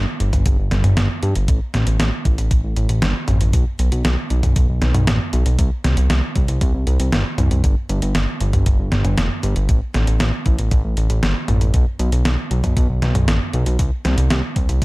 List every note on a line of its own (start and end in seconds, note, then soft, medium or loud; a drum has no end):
0.20 0.32 G1 medium
0.20 closed hi-hat medium
0.33 0.44 G1 medium
0.33 kick medium
0.33 closed hi-hat medium
0.33 mid tom medium
0.46 0.57 G1 loud
0.46 kick loud
0.46 closed hi-hat medium
0.59 0.70 G1 medium
0.71 0.83 G1 medium
0.71 snare medium
0.71 closed hi-hat medium
0.71 mid tom medium
0.84 0.96 G1 medium
0.84 closed hi-hat medium
0.84 mid tom medium
0.97 1.09 G1 loud
0.97 snare loud
0.97 closed hi-hat medium
1.23 1.34 G2 loud
1.23 closed hi-hat medium
1.35 1.47 G1 medium
1.35 closed hi-hat medium
1.48 1.60 A1 loud
1.48 kick loud
1.48 closed hi-hat loud
1.74 1.86 A1 medium
1.74 snare medium
1.74 closed hi-hat medium
1.87 1.98 A1 medium
1.87 closed hi-hat medium
2.00 2.11 A1 loud
2.00 snare loud
2.00 closed hi-hat loud
2.25 2.37 A1 medium
2.25 kick loud
2.25 closed hi-hat medium
2.38 2.50 A1 medium
2.38 closed hi-hat medium
2.51 2.62 A1 loud
2.51 kick loud
2.51 closed hi-hat medium
2.64 2.75 A1 medium
2.76 2.88 A1 loud
2.76 closed hi-hat medium
2.89 3.01 A1 medium
2.89 closed hi-hat medium
3.02 3.14 G1 loud
3.02 snare loud
3.02 closed hi-hat medium
3.28 3.39 A1 loud
3.28 closed hi-hat medium
3.28 mid tom medium
3.41 3.52 A1 medium
3.41 closed hi-hat medium
3.53 3.65 B1 loud
3.53 kick loud
3.53 closed hi-hat loud
3.79 3.91 B1 loud
3.79 closed hi-hat medium
3.92 4.03 B1 medium
3.92 closed hi-hat medium
4.05 4.16 B1 loud
4.05 snare loud
4.05 closed hi-hat medium
4.30 4.42 B1 medium
4.30 closed hi-hat medium
4.43 4.55 B1 medium
4.43 kick medium
4.43 closed hi-hat medium
4.43 mid tom medium
4.56 4.68 B1 loud
4.56 kick loud
4.56 closed hi-hat medium
4.69 4.80 B1 medium
4.82 4.93 B1 medium
4.82 snare medium
4.82 closed hi-hat medium
4.95 5.06 B1 medium
4.95 closed hi-hat medium
4.95 mid tom medium
5.07 5.19 A1 loud
5.07 snare loud
5.07 closed hi-hat loud
5.33 5.45 B1 loud
5.33 closed hi-hat medium
5.46 5.57 B1 medium
5.46 closed hi-hat medium
5.59 5.70 C2 loud
5.59 kick loud
5.59 closed hi-hat medium
5.84 5.96 C2 medium
5.84 snare medium
5.84 closed hi-hat medium
5.97 6.09 C2 medium
5.97 closed hi-hat medium
6.10 6.21 C2 loud
6.10 snare loud
6.10 closed hi-hat medium
6.36 6.47 C2 medium
6.36 kick loud
6.36 closed hi-hat medium
6.48 6.60 C2 medium
6.48 closed hi-hat medium
6.61 6.73 C2 loud
6.61 kick loud
6.61 closed hi-hat medium
6.74 6.86 C2 medium
6.87 6.98 C2 medium
6.87 closed hi-hat medium
7.00 7.11 C2 medium
7.00 closed hi-hat medium
7.12 7.24 G1 loud
7.12 snare loud
7.12 closed hi-hat medium
7.38 7.50 C2 loud
7.38 closed hi-hat medium
7.38 mid tom medium
7.51 7.62 C2 medium
7.51 closed hi-hat medium
7.64 7.75 G1 loud
7.64 kick loud
7.64 closed hi-hat medium
7.89 8.01 G1 loud
7.89 closed hi-hat medium
8.02 8.14 G1 medium
8.02 closed hi-hat medium
8.15 8.26 G1 loud
8.15 snare loud
8.15 closed hi-hat medium
8.40 8.52 G1 medium
8.40 closed hi-hat medium
8.53 8.65 G1 medium
8.53 kick medium
8.53 closed hi-hat medium
8.53 mid tom medium
8.66 8.78 G1 loud
8.66 kick loud
8.66 closed hi-hat medium
8.79 8.91 G1 medium
8.92 9.04 G1 medium
8.92 snare medium
8.92 closed hi-hat medium
9.05 9.16 G1 medium
9.05 closed hi-hat medium
9.05 mid tom medium
9.18 9.29 F1 loud
9.18 snare loud
9.18 closed hi-hat medium
9.43 9.55 G1 loud
9.43 closed hi-hat medium
9.56 9.68 G1 medium
9.56 closed hi-hat medium
9.69 9.80 A1 loud
9.69 kick loud
9.69 closed hi-hat medium
9.94 10.06 A1 medium
9.94 snare medium
9.94 closed hi-hat medium
10.07 10.19 A1 medium
10.07 closed hi-hat medium
10.20 10.32 A1 loud
10.20 snare loud
10.20 closed hi-hat medium
10.46 10.57 A1 loud
10.46 kick loud
10.46 closed hi-hat medium
10.59 10.70 A1 medium
10.59 closed hi-hat medium
10.71 10.83 A1 loud
10.71 kick loud
10.71 closed hi-hat medium
10.84 10.96 A1 medium
10.97 11.09 A1 loud
10.97 closed hi-hat medium
11.10 11.21 A1 medium
11.10 closed hi-hat medium
11.23 11.34 G1 loud
11.23 snare loud
11.23 closed hi-hat medium
11.48 11.60 A1 loud
11.48 closed hi-hat medium
11.48 mid tom medium
11.61 11.73 A1 medium
11.61 closed hi-hat medium
11.74 11.86 B1 loud
11.74 kick loud
11.74 closed hi-hat medium
11.99 12.11 B1 loud
11.99 closed hi-hat medium
12.12 12.24 B1 medium
12.12 closed hi-hat medium
12.25 12.37 B1 loud
12.25 snare loud
12.25 closed hi-hat medium
12.51 12.62 B1 medium
12.51 closed hi-hat medium
12.64 12.75 B1 medium
12.64 kick medium
12.64 closed hi-hat medium
12.64 mid tom medium
12.77 12.88 B1 loud
12.77 kick loud
12.77 closed hi-hat medium
12.89 13.01 B1 medium
13.02 13.14 B1 loud
13.02 snare medium
13.02 closed hi-hat medium
13.15 13.26 B1 medium
13.15 closed hi-hat medium
13.15 mid tom medium
13.28 13.39 A1 loud
13.28 snare loud
13.28 closed hi-hat medium
13.53 13.65 B1 loud
13.53 closed hi-hat medium
13.66 13.78 B1 medium
13.66 closed hi-hat medium
13.79 13.91 C2 loud
13.79 kick loud
13.79 closed hi-hat medium
14.05 14.16 C2 medium
14.05 snare medium
14.05 closed hi-hat medium
14.18 14.29 C2 medium
14.18 closed hi-hat medium
14.30 14.42 C2 loud
14.30 snare loud
14.30 closed hi-hat medium
14.56 14.68 C2 medium
14.56 kick loud
14.56 closed hi-hat medium
14.69 14.80 C2 medium
14.69 closed hi-hat medium
14.82 14.85 C2 loud
14.82 kick loud
14.82 closed hi-hat medium